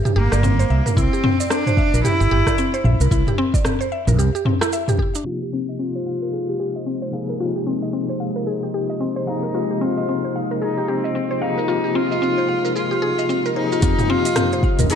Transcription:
0.05 synth pluck G4, mid tom, shaker
0.16 fretless electric bass G1, cello A#3, synth pluck G4
0.32 fretless electric bass G1, synth pluck D5, cross-stick, shaker
0.43 synth pluck C4, mid tom, shaker
0.59 synth pluck C5, shaker
0.70 fretless electric bass C2, synth pluck E5
0.86 synth pluck A#4, mid tom, shaker
0.97 fretless electric bass C2, cello C4, synth pluck E4, kick, shaker
1.13 synth pluck G4, shaker
1.24 synth pluck C4, mid tom
1.40 synth pluck D5, shaker
1.50 synth pluck C4, cello D4, cross-stick, shaker
1.67 synth pluck C5, mid tom, shaker
1.77 synth pluck E5, kick
1.93 fretless electric bass A#1, synth pluck A#4, shaker
2.03 cello E4, synth pluck G4, mid tom, shaker
2.20 fretless electric bass G1, synth pluck G4, shaker
2.31 fretless electric bass G1, synth pluck G4
2.47 synth pluck D5, kick, cross-stick, mid tom, shaker
2.58 synth pluck C4, shaker
2.74 synth pluck C5, shaker
2.84 fretless electric bass A#1, synth pluck E5, mid tom
3.00 fretless electric bass C2, synth pluck A#4, shaker
3.11 fretless electric bass C2, synth pluck E4, kick, shaker
3.27 synth pluck G4, mid tom, shaker
3.38 synth pluck C4
3.54 synth pluck D5, kick, shaker
3.65 synth pluck C4, cross-stick, mid tom, shaker
3.81 synth pluck C5, shaker
3.92 synth pluck E5
4.07 fretless electric bass A#1, synth pluck A#4, mid tom, shaker
4.18 fretless electric bass C2, synth pluck G4, shaker
4.35 synth pluck G4, shaker
4.45 synth pluck C4, mid tom
4.61 synth pluck E4, cross-stick, shaker
4.73 synth pluck E5, shaker
4.88 synth pluck G4, mid tom, shaker
4.99 synth pluck G4, kick
5.15 synth pluck D4, shaker
5.24 tine electric piano C3 F3 A#3 D#4 G4, ambient pad G#3 D#4 F4 C5 D#5, synth pluck F4
5.42 synth pluck G4
5.53 synth pluck C4
5.69 synth pluck D#5, shaker
5.79 synth pluck C4, cello F4, shaker
5.95 synth pluck C5
6.06 synth pluck F5
6.22 synth pluck A#4, shaker
6.33 synth pluck G#4, shaker
6.49 synth pluck G4, shaker
6.60 synth pluck G4
6.76 synth pluck D#5, shaker
6.86 synth pluck C4, shaker
7.02 synth pluck C5, shaker
7.12 tine electric piano C3 F3 A#3 D#4 G#4, synth pluck F5
7.29 synth pluck A#4, shaker
7.37 tine electric piano C3 F3 A#3 D#4 G4, synth pluck F4, shaker
7.56 synth pluck G4, shaker
7.66 synth pluck C4
7.82 synth pluck D#5, shaker
7.93 synth pluck C4, shaker
8.09 synth pluck C5, shaker
8.20 synth pluck F5
8.36 synth pluck A#4, shaker
8.47 synth pluck G#4, shaker
8.63 synth pluck G4, shaker
8.74 synth pluck G4
8.90 synth pluck D#5, shaker
9.00 synth pluck C4, shaker
9.16 synth pluck C5, shaker
9.26 tine electric piano C3 F3 A#3 D#4 G#4, cello D#4, synth pluck F5
9.43 synth pluck A#4, shaker
9.52 tine electric piano C3 F3 A#3 D#4 G4, synth pluck F4, shaker
9.71 synth pluck G4, shaker
9.81 synth pluck C4, cello F4
9.98 synth pluck D#5, shaker
10.08 synth pluck C4, shaker
10.24 synth pluck C5, shaker
10.36 synth pluck F5
10.51 synth pluck A#4, shaker
10.62 cello D#4, synth pluck G#4, shaker
10.78 synth pluck G4, shaker
10.88 cello C4, synth pluck G4
11.04 synth pluck D#5, shaker
11.15 synth pluck C4, shaker
11.31 synth pluck C5, shaker
11.40 tine electric piano C3 F3 A#3 D#4 G#4, cello D#4, synth pluck F5
11.58 synth pluck A#4, shaker
11.67 tine electric piano C3 F3 A#3 D#4, synth pluck F4, shaker
11.71 tine electric piano G4
11.84 synth pluck G4, shaker
11.95 synth pluck C4, cello F4
12.12 synth pluck D#5, shaker
12.22 synth pluck C4, shaker
12.38 synth pluck C5, shaker
12.48 synth pluck F5
12.65 synth pluck A#4, shaker
12.75 cello F4, synth pluck G#4, shaker
12.91 synth pluck G4, shaker
13.02 synth pluck G#4
13.18 synth pluck D#5, shaker
13.29 synth pluck C4, shaker
13.46 synth pluck A#4, shaker
13.55 tine electric piano C3 F3 A#3 D#4 G#4, cello D#4, synth pluck C5
13.72 synth pluck F4, shaker
13.80 fretless electric bass F2, tine electric piano C3 F3 A#3 D#4, synth pluck F4, ambient pad F4 C5 D#5, kick, closed hi-hat, shaker
13.84 tine electric piano G4
13.98 synth pluck G4, mid tom, shaker
14.09 synth pluck C4, cello F4
14.25 synth pluck D#5, closed hi-hat, shaker
14.36 synth pluck C4, cross-stick, closed hi-hat, mid tom, shaker
14.53 synth pluck C5, shaker
14.63 synth pluck F5, kick
14.79 fretless electric bass D#2, synth pluck A#4, closed hi-hat, mid tom, shaker
14.90 cello D#4, synth pluck G#4, closed hi-hat, shaker

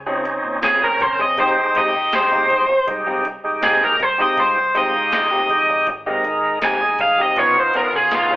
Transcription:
Already playing: fingered electric bass C#2
0.06 clean electric guitar F3 C4 C#4 G#4, tonewheel organ C4 C#4 D#4
0.25 muted clean electric guitar stroke, closed hi-hat
0.45 fingered electric bass A#2
0.62 clean electric guitar F3 C4 C#4 G#4, overdriven electric guitar G#4, snare, closed hi-hat, tambourine
0.81 tonewheel organ C4 C#4 A#4, overdriven electric guitar A#4, muted clean electric guitar stroke
1.00 fingered electric bass F#1, overdriven electric guitar C5, muted clean electric guitar stroke, kick, closed hi-hat
1.19 clean electric guitar C4 C#4 G#4, overdriven electric guitar D#5
1.37 fingered electric bass F1, string section G#3 D#4 G4, clean electric guitar G#3 C4 D#4 G4, tonewheel organ G#3 D#4 G4, overdriven electric guitar C5, kick, closed hi-hat
1.57 muted clean electric guitar stroke
1.75 string section G#3 D#4 G4, clean electric guitar G#3 C4 D#4 G4, overdriven electric guitar D#5, closed hi-hat
1.94 fingered electric bass F1, muted clean electric guitar stroke
2.13 tonewheel organ G#3 D#4 G4, overdriven electric guitar C5, snare, closed hi-hat, tambourine
2.31 clean electric guitar C4 D#4 G4
2.50 fingered electric bass F1, muted clean electric guitar stroke, kick, closed hi-hat
2.69 muted clean electric guitar stroke
2.87 fingered electric bass C2, tonewheel organ G#3 D#4 G4, muted clean electric guitar stroke, kick, closed hi-hat
3.07 clean electric guitar G#3 C4 D#4 G4
3.25 muted clean electric guitar stroke, closed hi-hat
3.44 fingered electric bass F1, tonewheel organ G#3 D#4 G4
3.62 clean electric guitar G#3 C4 D#4 G4, overdriven electric guitar G#4, snare, closed hi-hat, tambourine
3.82 overdriven electric guitar A#4, muted clean electric guitar stroke
4.00 fingered electric bass C2, overdriven electric guitar C5, muted clean electric guitar stroke, kick, closed hi-hat
4.18 tonewheel organ G#3 D#4 G4, clean electric guitar C4 D#4 G4, overdriven electric guitar D#5, muted fingered electric bass stroke
4.36 fingered electric bass C2, string section G#3 D#4 F4, overdriven electric guitar C5, kick, closed hi-hat
4.56 muted clean electric guitar stroke
4.74 clean electric guitar G#3 C4 D#4 G4, tonewheel organ G#3 D#4 G4, string section G#3 D#4 F4, overdriven electric guitar D#5, closed hi-hat
4.94 fingered electric bass F1, muted clean electric guitar stroke
5.12 overdriven electric guitar D#5, snare, closed hi-hat, tambourine
5.31 clean electric guitar C4 D#4 G4
5.50 fingered electric bass F2, tonewheel organ G#3 D#4 G4, muted clean electric guitar stroke, kick, closed hi-hat
5.69 muted clean electric guitar stroke
5.87 fingered electric bass G#1, muted clean electric guitar stroke, kick, closed hi-hat
6.06 tonewheel organ G#3 D#4 A#4, clean electric guitar G#3 C4 D#4 G4
6.24 fingered electric bass G#1, muted clean electric guitar stroke, closed hi-hat
6.62 fingered electric bass A#1, clean electric guitar G#3 C4 D#4 G4, overdriven electric guitar G#5, snare, closed hi-hat, tambourine
6.81 tonewheel organ G#3 D#4 G#4, muted clean electric guitar stroke
6.99 fingered electric bass C2, overdriven electric guitar F5, muted clean electric guitar stroke, kick, closed hi-hat
7.18 clean electric guitar C4 D#4 G4, overdriven electric guitar D#5
7.36 fingered electric bass C#2, clean electric guitar F3 B3 C#4 G#4, string section B3 C#4 F4, tonewheel organ B3 D#4 F4, overdriven electric guitar C#5, kick, closed hi-hat
7.56 overdriven electric guitar C5, muted clean electric guitar stroke
7.74 clean electric guitar F3 B3 C#4 G#4, string section B3 C#4 F4, overdriven electric guitar A#4, closed hi-hat
7.93 fingered electric bass C#2, overdriven electric guitar G#4, muted clean electric guitar stroke
8.11 tonewheel organ B3 D#4 G#4, overdriven electric guitar F4, snare, closed hi-hat, tambourine
8.30 clean electric guitar B3 C#4 G#4

